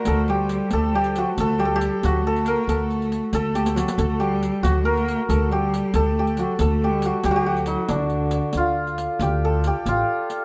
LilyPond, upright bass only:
\new Staff \with { instrumentName = "Upright bass" } { \clef bass \time 6/8 \tempo 4. = 92 d,4. d,4. | d,4. d,4. | d,4. d,4. | d,4. d,4. |
d,4. d,4. | d,4. d,4. | d,4. d,4. | d,4. a,,8 r4 | }